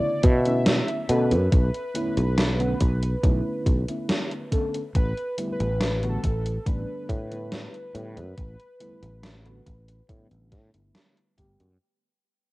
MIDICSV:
0, 0, Header, 1, 5, 480
1, 0, Start_track
1, 0, Tempo, 857143
1, 852, Time_signature, 4, 2, 24, 8
1, 7012, End_track
2, 0, Start_track
2, 0, Title_t, "Soft synth lead"
2, 0, Program_c, 0, 80
2, 0, Note_on_c, 0, 74, 109
2, 140, Note_on_c, 0, 76, 121
2, 148, Note_off_c, 0, 74, 0
2, 616, Note_off_c, 0, 76, 0
2, 620, Note_on_c, 0, 71, 105
2, 2514, Note_off_c, 0, 71, 0
2, 2773, Note_on_c, 0, 71, 118
2, 2996, Note_off_c, 0, 71, 0
2, 3092, Note_on_c, 0, 71, 113
2, 3390, Note_off_c, 0, 71, 0
2, 3410, Note_on_c, 0, 69, 102
2, 3729, Note_on_c, 0, 71, 113
2, 3737, Note_off_c, 0, 69, 0
2, 6130, Note_off_c, 0, 71, 0
2, 7012, End_track
3, 0, Start_track
3, 0, Title_t, "FM electric piano"
3, 0, Program_c, 1, 5
3, 0, Note_on_c, 1, 49, 76
3, 0, Note_on_c, 1, 50, 85
3, 0, Note_on_c, 1, 57, 75
3, 0, Note_on_c, 1, 59, 77
3, 0, Note_on_c, 1, 64, 93
3, 225, Note_off_c, 1, 50, 0
3, 226, Note_off_c, 1, 57, 0
3, 228, Note_off_c, 1, 49, 0
3, 228, Note_off_c, 1, 59, 0
3, 229, Note_off_c, 1, 64, 0
3, 253, Note_on_c, 1, 50, 74
3, 256, Note_on_c, 1, 57, 69
3, 257, Note_on_c, 1, 59, 70
3, 260, Note_on_c, 1, 61, 70
3, 263, Note_on_c, 1, 64, 86
3, 583, Note_off_c, 1, 50, 0
3, 584, Note_off_c, 1, 57, 0
3, 585, Note_off_c, 1, 59, 0
3, 586, Note_off_c, 1, 61, 0
3, 588, Note_off_c, 1, 64, 0
3, 607, Note_on_c, 1, 50, 90
3, 609, Note_on_c, 1, 57, 83
3, 611, Note_on_c, 1, 59, 87
3, 612, Note_on_c, 1, 61, 84
3, 615, Note_on_c, 1, 69, 102
3, 756, Note_off_c, 1, 50, 0
3, 757, Note_off_c, 1, 57, 0
3, 758, Note_off_c, 1, 59, 0
3, 758, Note_off_c, 1, 61, 0
3, 760, Note_off_c, 1, 69, 0
3, 1087, Note_on_c, 1, 50, 85
3, 1090, Note_on_c, 1, 57, 82
3, 1092, Note_on_c, 1, 59, 80
3, 1093, Note_on_c, 1, 61, 81
3, 1096, Note_on_c, 1, 64, 100
3, 1236, Note_off_c, 1, 50, 0
3, 1237, Note_off_c, 1, 57, 0
3, 1238, Note_off_c, 1, 59, 0
3, 1239, Note_off_c, 1, 61, 0
3, 1240, Note_off_c, 1, 64, 0
3, 1450, Note_on_c, 1, 50, 100
3, 1452, Note_on_c, 1, 57, 86
3, 1454, Note_on_c, 1, 59, 92
3, 1457, Note_on_c, 1, 61, 91
3, 1458, Note_on_c, 1, 66, 109
3, 1539, Note_off_c, 1, 50, 0
3, 1541, Note_off_c, 1, 57, 0
3, 1541, Note_off_c, 1, 59, 0
3, 1543, Note_off_c, 1, 61, 0
3, 1543, Note_off_c, 1, 66, 0
3, 1808, Note_on_c, 1, 50, 80
3, 1810, Note_on_c, 1, 57, 79
3, 1811, Note_on_c, 1, 59, 74
3, 1814, Note_on_c, 1, 61, 77
3, 1816, Note_on_c, 1, 64, 92
3, 2144, Note_off_c, 1, 50, 0
3, 2145, Note_off_c, 1, 57, 0
3, 2146, Note_off_c, 1, 59, 0
3, 2147, Note_off_c, 1, 61, 0
3, 2148, Note_off_c, 1, 64, 0
3, 2172, Note_on_c, 1, 50, 73
3, 2174, Note_on_c, 1, 57, 70
3, 2176, Note_on_c, 1, 59, 68
3, 2178, Note_on_c, 1, 61, 67
3, 2181, Note_on_c, 1, 64, 80
3, 2502, Note_off_c, 1, 50, 0
3, 2503, Note_off_c, 1, 57, 0
3, 2505, Note_off_c, 1, 59, 0
3, 2505, Note_off_c, 1, 61, 0
3, 2507, Note_off_c, 1, 64, 0
3, 2527, Note_on_c, 1, 50, 94
3, 2529, Note_on_c, 1, 57, 83
3, 2531, Note_on_c, 1, 59, 88
3, 2532, Note_on_c, 1, 61, 85
3, 2536, Note_on_c, 1, 69, 104
3, 2676, Note_off_c, 1, 50, 0
3, 2677, Note_off_c, 1, 57, 0
3, 2678, Note_off_c, 1, 59, 0
3, 2678, Note_off_c, 1, 61, 0
3, 2680, Note_off_c, 1, 69, 0
3, 3009, Note_on_c, 1, 50, 89
3, 3011, Note_on_c, 1, 55, 79
3, 3013, Note_on_c, 1, 57, 80
3, 3015, Note_on_c, 1, 59, 80
3, 3017, Note_on_c, 1, 64, 99
3, 3157, Note_off_c, 1, 50, 0
3, 3158, Note_off_c, 1, 55, 0
3, 3159, Note_off_c, 1, 57, 0
3, 3160, Note_off_c, 1, 59, 0
3, 3161, Note_off_c, 1, 64, 0
3, 3371, Note_on_c, 1, 50, 101
3, 3373, Note_on_c, 1, 55, 92
3, 3375, Note_on_c, 1, 57, 88
3, 3378, Note_on_c, 1, 59, 93
3, 3380, Note_on_c, 1, 66, 110
3, 3460, Note_off_c, 1, 50, 0
3, 3461, Note_off_c, 1, 55, 0
3, 3462, Note_off_c, 1, 57, 0
3, 3463, Note_off_c, 1, 59, 0
3, 3464, Note_off_c, 1, 66, 0
3, 3728, Note_on_c, 1, 50, 86
3, 3730, Note_on_c, 1, 55, 79
3, 3733, Note_on_c, 1, 57, 78
3, 3734, Note_on_c, 1, 59, 75
3, 3736, Note_on_c, 1, 62, 92
3, 4064, Note_off_c, 1, 50, 0
3, 4065, Note_off_c, 1, 55, 0
3, 4067, Note_off_c, 1, 57, 0
3, 4068, Note_off_c, 1, 59, 0
3, 4068, Note_off_c, 1, 62, 0
3, 4092, Note_on_c, 1, 50, 77
3, 4094, Note_on_c, 1, 55, 67
3, 4098, Note_on_c, 1, 57, 66
3, 4098, Note_on_c, 1, 59, 66
3, 4101, Note_on_c, 1, 64, 84
3, 4422, Note_off_c, 1, 50, 0
3, 4423, Note_off_c, 1, 55, 0
3, 4425, Note_off_c, 1, 57, 0
3, 4425, Note_off_c, 1, 59, 0
3, 4427, Note_off_c, 1, 64, 0
3, 4448, Note_on_c, 1, 50, 93
3, 4450, Note_on_c, 1, 55, 87
3, 4452, Note_on_c, 1, 57, 90
3, 4454, Note_on_c, 1, 59, 85
3, 4456, Note_on_c, 1, 67, 105
3, 4596, Note_off_c, 1, 50, 0
3, 4597, Note_off_c, 1, 55, 0
3, 4598, Note_off_c, 1, 57, 0
3, 4600, Note_off_c, 1, 59, 0
3, 4600, Note_off_c, 1, 67, 0
3, 4926, Note_on_c, 1, 50, 88
3, 4929, Note_on_c, 1, 55, 83
3, 4931, Note_on_c, 1, 57, 80
3, 4933, Note_on_c, 1, 59, 79
3, 4934, Note_on_c, 1, 64, 97
3, 5075, Note_off_c, 1, 50, 0
3, 5077, Note_off_c, 1, 55, 0
3, 5078, Note_off_c, 1, 57, 0
3, 5079, Note_off_c, 1, 59, 0
3, 5079, Note_off_c, 1, 64, 0
3, 5291, Note_on_c, 1, 50, 102
3, 5292, Note_on_c, 1, 55, 91
3, 5294, Note_on_c, 1, 57, 91
3, 5297, Note_on_c, 1, 59, 89
3, 5299, Note_on_c, 1, 66, 109
3, 5380, Note_off_c, 1, 50, 0
3, 5381, Note_off_c, 1, 55, 0
3, 5382, Note_off_c, 1, 57, 0
3, 5383, Note_off_c, 1, 59, 0
3, 5384, Note_off_c, 1, 66, 0
3, 5646, Note_on_c, 1, 50, 85
3, 5649, Note_on_c, 1, 55, 75
3, 5650, Note_on_c, 1, 57, 77
3, 5653, Note_on_c, 1, 59, 77
3, 5654, Note_on_c, 1, 62, 92
3, 5984, Note_off_c, 1, 50, 0
3, 5985, Note_off_c, 1, 55, 0
3, 5985, Note_off_c, 1, 57, 0
3, 5987, Note_off_c, 1, 59, 0
3, 5988, Note_off_c, 1, 62, 0
3, 6011, Note_on_c, 1, 50, 77
3, 6013, Note_on_c, 1, 55, 70
3, 6015, Note_on_c, 1, 57, 69
3, 6018, Note_on_c, 1, 59, 70
3, 6019, Note_on_c, 1, 64, 82
3, 6342, Note_off_c, 1, 50, 0
3, 6343, Note_off_c, 1, 55, 0
3, 6344, Note_off_c, 1, 57, 0
3, 6345, Note_off_c, 1, 59, 0
3, 6346, Note_off_c, 1, 64, 0
3, 6368, Note_on_c, 1, 50, 92
3, 6370, Note_on_c, 1, 55, 86
3, 6373, Note_on_c, 1, 57, 86
3, 6374, Note_on_c, 1, 59, 85
3, 6376, Note_on_c, 1, 67, 107
3, 6516, Note_off_c, 1, 50, 0
3, 6517, Note_off_c, 1, 55, 0
3, 6519, Note_off_c, 1, 57, 0
3, 6519, Note_off_c, 1, 59, 0
3, 6520, Note_off_c, 1, 67, 0
3, 7012, End_track
4, 0, Start_track
4, 0, Title_t, "Fretless electric bass"
4, 0, Program_c, 2, 35
4, 132, Note_on_c, 2, 47, 101
4, 452, Note_off_c, 2, 47, 0
4, 612, Note_on_c, 2, 47, 93
4, 737, Note_on_c, 2, 42, 82
4, 745, Note_off_c, 2, 47, 0
4, 826, Note_off_c, 2, 42, 0
4, 852, Note_on_c, 2, 35, 102
4, 948, Note_off_c, 2, 35, 0
4, 1217, Note_on_c, 2, 35, 99
4, 1531, Note_off_c, 2, 35, 0
4, 1572, Note_on_c, 2, 35, 92
4, 1760, Note_off_c, 2, 35, 0
4, 1812, Note_on_c, 2, 35, 102
4, 1908, Note_off_c, 2, 35, 0
4, 2052, Note_on_c, 2, 35, 87
4, 2148, Note_off_c, 2, 35, 0
4, 2771, Note_on_c, 2, 33, 105
4, 2868, Note_off_c, 2, 33, 0
4, 3137, Note_on_c, 2, 33, 104
4, 3451, Note_off_c, 2, 33, 0
4, 3491, Note_on_c, 2, 33, 98
4, 3680, Note_off_c, 2, 33, 0
4, 3731, Note_on_c, 2, 33, 102
4, 3828, Note_off_c, 2, 33, 0
4, 3972, Note_on_c, 2, 45, 102
4, 4292, Note_off_c, 2, 45, 0
4, 4451, Note_on_c, 2, 45, 94
4, 4575, Note_on_c, 2, 42, 82
4, 4583, Note_off_c, 2, 45, 0
4, 4666, Note_off_c, 2, 42, 0
4, 4691, Note_on_c, 2, 33, 99
4, 4788, Note_off_c, 2, 33, 0
4, 5054, Note_on_c, 2, 33, 99
4, 5370, Note_off_c, 2, 33, 0
4, 5411, Note_on_c, 2, 33, 97
4, 5600, Note_off_c, 2, 33, 0
4, 5651, Note_on_c, 2, 45, 85
4, 5748, Note_off_c, 2, 45, 0
4, 5776, Note_on_c, 2, 33, 75
4, 5891, Note_on_c, 2, 45, 97
4, 5900, Note_off_c, 2, 33, 0
4, 5988, Note_off_c, 2, 45, 0
4, 6017, Note_on_c, 2, 31, 86
4, 6106, Note_off_c, 2, 31, 0
4, 6371, Note_on_c, 2, 31, 89
4, 6468, Note_off_c, 2, 31, 0
4, 6498, Note_on_c, 2, 42, 102
4, 6587, Note_off_c, 2, 42, 0
4, 7012, End_track
5, 0, Start_track
5, 0, Title_t, "Drums"
5, 130, Note_on_c, 9, 42, 76
5, 132, Note_on_c, 9, 36, 105
5, 186, Note_off_c, 9, 42, 0
5, 188, Note_off_c, 9, 36, 0
5, 255, Note_on_c, 9, 42, 50
5, 311, Note_off_c, 9, 42, 0
5, 371, Note_on_c, 9, 38, 120
5, 371, Note_on_c, 9, 42, 82
5, 427, Note_off_c, 9, 38, 0
5, 427, Note_off_c, 9, 42, 0
5, 495, Note_on_c, 9, 42, 35
5, 551, Note_off_c, 9, 42, 0
5, 611, Note_on_c, 9, 42, 79
5, 667, Note_off_c, 9, 42, 0
5, 735, Note_on_c, 9, 42, 54
5, 791, Note_off_c, 9, 42, 0
5, 852, Note_on_c, 9, 36, 117
5, 852, Note_on_c, 9, 42, 80
5, 908, Note_off_c, 9, 36, 0
5, 908, Note_off_c, 9, 42, 0
5, 976, Note_on_c, 9, 42, 35
5, 1032, Note_off_c, 9, 42, 0
5, 1092, Note_on_c, 9, 42, 78
5, 1148, Note_off_c, 9, 42, 0
5, 1216, Note_on_c, 9, 42, 50
5, 1272, Note_off_c, 9, 42, 0
5, 1331, Note_on_c, 9, 38, 114
5, 1331, Note_on_c, 9, 42, 76
5, 1387, Note_off_c, 9, 38, 0
5, 1387, Note_off_c, 9, 42, 0
5, 1456, Note_on_c, 9, 42, 35
5, 1512, Note_off_c, 9, 42, 0
5, 1571, Note_on_c, 9, 42, 75
5, 1572, Note_on_c, 9, 36, 61
5, 1627, Note_off_c, 9, 42, 0
5, 1628, Note_off_c, 9, 36, 0
5, 1695, Note_on_c, 9, 42, 56
5, 1751, Note_off_c, 9, 42, 0
5, 1812, Note_on_c, 9, 36, 113
5, 1812, Note_on_c, 9, 42, 79
5, 1868, Note_off_c, 9, 36, 0
5, 1868, Note_off_c, 9, 42, 0
5, 2051, Note_on_c, 9, 36, 103
5, 2053, Note_on_c, 9, 42, 77
5, 2107, Note_off_c, 9, 36, 0
5, 2109, Note_off_c, 9, 42, 0
5, 2176, Note_on_c, 9, 42, 51
5, 2232, Note_off_c, 9, 42, 0
5, 2292, Note_on_c, 9, 38, 121
5, 2292, Note_on_c, 9, 42, 75
5, 2348, Note_off_c, 9, 38, 0
5, 2348, Note_off_c, 9, 42, 0
5, 2416, Note_on_c, 9, 42, 36
5, 2472, Note_off_c, 9, 42, 0
5, 2532, Note_on_c, 9, 36, 61
5, 2532, Note_on_c, 9, 42, 81
5, 2588, Note_off_c, 9, 36, 0
5, 2588, Note_off_c, 9, 42, 0
5, 2656, Note_on_c, 9, 42, 51
5, 2712, Note_off_c, 9, 42, 0
5, 2772, Note_on_c, 9, 36, 115
5, 2772, Note_on_c, 9, 42, 78
5, 2828, Note_off_c, 9, 36, 0
5, 2828, Note_off_c, 9, 42, 0
5, 2897, Note_on_c, 9, 42, 36
5, 2953, Note_off_c, 9, 42, 0
5, 3012, Note_on_c, 9, 42, 77
5, 3068, Note_off_c, 9, 42, 0
5, 3137, Note_on_c, 9, 42, 51
5, 3193, Note_off_c, 9, 42, 0
5, 3251, Note_on_c, 9, 38, 113
5, 3251, Note_on_c, 9, 42, 80
5, 3307, Note_off_c, 9, 38, 0
5, 3307, Note_off_c, 9, 42, 0
5, 3376, Note_on_c, 9, 42, 36
5, 3432, Note_off_c, 9, 42, 0
5, 3492, Note_on_c, 9, 36, 60
5, 3492, Note_on_c, 9, 42, 79
5, 3548, Note_off_c, 9, 36, 0
5, 3548, Note_off_c, 9, 42, 0
5, 3616, Note_on_c, 9, 42, 56
5, 3672, Note_off_c, 9, 42, 0
5, 3732, Note_on_c, 9, 36, 116
5, 3733, Note_on_c, 9, 42, 83
5, 3788, Note_off_c, 9, 36, 0
5, 3789, Note_off_c, 9, 42, 0
5, 3972, Note_on_c, 9, 36, 100
5, 3974, Note_on_c, 9, 42, 76
5, 4028, Note_off_c, 9, 36, 0
5, 4030, Note_off_c, 9, 42, 0
5, 4097, Note_on_c, 9, 42, 54
5, 4153, Note_off_c, 9, 42, 0
5, 4211, Note_on_c, 9, 38, 117
5, 4211, Note_on_c, 9, 42, 78
5, 4267, Note_off_c, 9, 38, 0
5, 4267, Note_off_c, 9, 42, 0
5, 4336, Note_on_c, 9, 42, 38
5, 4392, Note_off_c, 9, 42, 0
5, 4452, Note_on_c, 9, 42, 83
5, 4508, Note_off_c, 9, 42, 0
5, 4576, Note_on_c, 9, 42, 55
5, 4632, Note_off_c, 9, 42, 0
5, 4691, Note_on_c, 9, 42, 80
5, 4692, Note_on_c, 9, 36, 114
5, 4747, Note_off_c, 9, 42, 0
5, 4748, Note_off_c, 9, 36, 0
5, 4815, Note_on_c, 9, 42, 38
5, 4871, Note_off_c, 9, 42, 0
5, 4931, Note_on_c, 9, 42, 83
5, 4987, Note_off_c, 9, 42, 0
5, 5055, Note_on_c, 9, 42, 52
5, 5111, Note_off_c, 9, 42, 0
5, 5171, Note_on_c, 9, 38, 119
5, 5171, Note_on_c, 9, 42, 84
5, 5227, Note_off_c, 9, 38, 0
5, 5227, Note_off_c, 9, 42, 0
5, 5295, Note_on_c, 9, 42, 37
5, 5351, Note_off_c, 9, 42, 0
5, 5412, Note_on_c, 9, 36, 62
5, 5413, Note_on_c, 9, 42, 79
5, 5468, Note_off_c, 9, 36, 0
5, 5469, Note_off_c, 9, 42, 0
5, 5534, Note_on_c, 9, 42, 59
5, 5590, Note_off_c, 9, 42, 0
5, 5651, Note_on_c, 9, 36, 116
5, 5651, Note_on_c, 9, 42, 84
5, 5707, Note_off_c, 9, 36, 0
5, 5707, Note_off_c, 9, 42, 0
5, 5775, Note_on_c, 9, 42, 39
5, 5831, Note_off_c, 9, 42, 0
5, 5891, Note_on_c, 9, 36, 107
5, 5891, Note_on_c, 9, 38, 35
5, 5891, Note_on_c, 9, 42, 81
5, 5947, Note_off_c, 9, 36, 0
5, 5947, Note_off_c, 9, 38, 0
5, 5947, Note_off_c, 9, 42, 0
5, 6014, Note_on_c, 9, 42, 56
5, 6070, Note_off_c, 9, 42, 0
5, 6131, Note_on_c, 9, 38, 116
5, 6131, Note_on_c, 9, 42, 84
5, 6187, Note_off_c, 9, 38, 0
5, 6187, Note_off_c, 9, 42, 0
5, 6256, Note_on_c, 9, 42, 37
5, 6312, Note_off_c, 9, 42, 0
5, 6371, Note_on_c, 9, 36, 58
5, 6372, Note_on_c, 9, 42, 86
5, 6427, Note_off_c, 9, 36, 0
5, 6428, Note_off_c, 9, 42, 0
5, 6496, Note_on_c, 9, 42, 55
5, 6552, Note_off_c, 9, 42, 0
5, 7012, End_track
0, 0, End_of_file